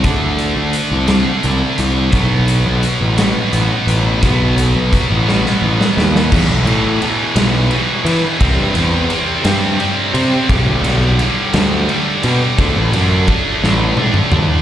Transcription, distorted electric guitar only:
X:1
M:6/8
L:1/8
Q:3/8=57
K:Em
V:1 name="Distorted electric guitar" clef=bass
[D,A,D]3 [D,A,D]3 | [B,,F,B,]3 [B,,F,B,]3 | [B,,F,B,]3 [B,,F,B,]3 | [E,,B,,E,] [E,,B,,E,] [E,,B,,E,] [E,,B,,E,] [E,,B,,E,] [E,,B,,E,] |
[C,G,C] [C,G,C] [C,G,C] [C,G,C] [C,G,C] [C,G,C] | [G,,D,G,] [G,,D,G,] [G,,D,G,] [G,,D,G,] [G,,D,G,] [G,,D,G,] | [D,A,D] [D,A,D] [D,A,D] [D,A,D] [D,A,D] [D,A,D] |]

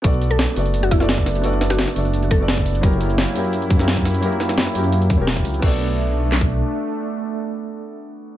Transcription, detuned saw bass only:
X:1
M:4/4
L:1/16
Q:1/4=172
K:Bm
V:1 name="Detuned saw bass" clef=bass
B,,,4- B,,, z F,,,8- F,,,2- | F,,,4- F,,, z F,,,8- F,,,2 | F,,,4- F,,, z F,,8- F,,2- | F,,4- F,, z F,,4- F,, E,,,3 C,,2 |
B,,,12 z4 | z16 |]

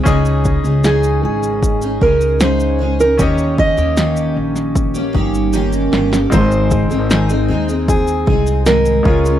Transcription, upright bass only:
X:1
M:4/4
L:1/16
Q:1/4=77
K:Ab
V:1 name="Upright bass" clef=bass
D,,3 D,,3 A,,,4 D,,6 | E,,3 E,,3 B,,,4 G,,,4 G,,,2 | A,,,3 A,,,3 E,,4 C,,4 D,,2 |]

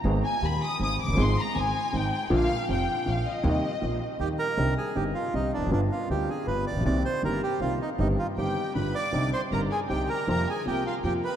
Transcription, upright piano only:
X:1
M:3/4
L:1/16
Q:1/4=158
K:Eb
V:1 name="Upright piano" clef=bass
[A,,,A,,E,A,_CA]2 z2 [E,,,E,,]2 z2 [A,,,A,,]2 z/2 F,,,/2 _G,,,/2 =G,,,/2 | [A,,,A,,F,A,CA]2 z2 [A,,,A,,]2 z2 [A,,,A,,]2 z2 | [B,,,B,,D,F,B,F]2 z2 [F,,,F,,]2 z2 [B,,,B,,]2 z2 | [E,,C,E,G,B,E]2 z2 [B,,,B,,]2 z2 [E,,E,]2 z2 |
[K:Cm] [C,,C,D,G,CE]2 z2 [G,,,G,,D,G,CE]2 z2 [C,,C,D,G,CE]2 z/2 =E,,/2 F,,/2 ^F,,/2 | [G,,,G,,D,G,=B,F]2 z2 [D,,D,G,B,F]2 z2 [G,,,G,,D,G,B,F]2 z/2 =A,,,/2 _B,,,/2 =B,,,/2 | [C,,C,E,B,CG]2 z2 [G,,,G,,E,B,CG]2 z2 [C,,C,E,B,CG]2 z2 | [G,,,G,,E,G,CG]2 z2 [G,,,G,,E,G,CG]2 z2 [G,,,G,,D,G,=B,F]2 z2 |
[C,,C,D,G,CE]2 z2 [G,,,G,,D,G,CE]2 z2 [C,,C,D,G,CE]2 z2 | [F,,C,F,B,F]2 z2 [C,,C,F,B,F]2 z2 [F,,C,F,B,F]2 z2 |]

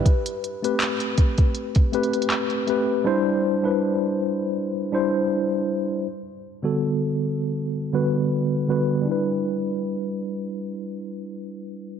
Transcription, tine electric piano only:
X:1
M:4/4
L:1/16
Q:"Swing 16ths" 1/4=80
K:Em
V:1 name="Tine electric piano"
[GB] z2 [A,CGB]6 z [A,CGB]3 z [A,CGB]2 | [G,DEc]3 [G,DEB]6 z [G,DEc]6 | z3 [D,G,B,FA]6 z [D,G,B,FB]3 z [D,G,B,FB]2 | [G,DEB]16 |]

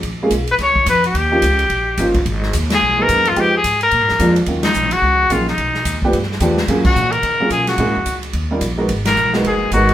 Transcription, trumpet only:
X:1
M:4/4
L:1/8
Q:"Swing" 1/4=217
K:Ebm
V:1 name="Trumpet"
z3 c d2 c =G- | =G6- G z | z3 A2 B2 F | =G A2 B4 z |
z E2 G3 F E- | E3 z4 z | z G2 B3 A G- | G3 z4 z |
z B2 z A2 G2 |]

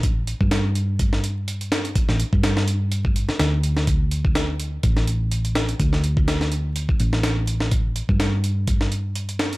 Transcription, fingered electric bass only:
X:1
M:4/4
L:1/16
Q:"Swing 16ths" 1/4=125
K:Cmix
V:1 name="Fingered electric bass" clef=bass
A,,,2 z G,,12- G,, | z A,,, z G,,8 z D,,4- | D,,6- D,, z A,,,6- A,,, z | D,,8- D,, z A,,,6- |
A,,,2 z G,,12- G,, |]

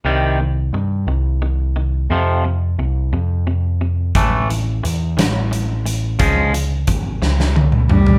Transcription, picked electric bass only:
X:1
M:6/8
L:1/8
Q:3/8=59
K:Fmix
V:1 name="Picked electric bass" clef=bass
C,,2 G,, C,,3 | F,,2 C,, F,,3 | A,,,2 =E,, A,,,3 | _D,,2 _A,,, D,,3 |]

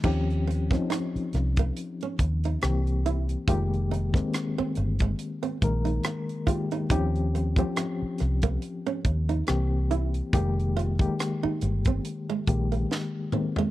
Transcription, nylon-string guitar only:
X:1
M:4/4
L:1/16
Q:"Swing 16ths" 1/4=70
K:Fm
V:1 name="Nylon-string guitar"
E z2 C E z2 B, z D z E z2 =E z | F z E z2 C z A, z C z E z2 F E | E z2 C E z2 B, z D z E z2 =E z | A z F z2 E z C z A, z B, z2 C A, |]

